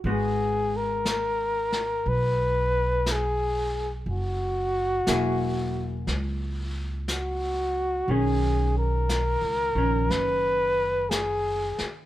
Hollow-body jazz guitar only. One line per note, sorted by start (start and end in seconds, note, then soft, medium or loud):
0.06 4.07 G#3 soft
0.06 4.08 B3 soft
0.06 4.07 F#4 soft
5.07 8.08 F#3 soft
5.07 8.09 A#3 soft
5.07 8.09 E4 soft
5.07 8.09 G#4 soft
8.09 9.74 D#3 soft
8.09 9.77 C#4 soft
9.75 12.05 D#3 soft
9.75 12.06 C#4 soft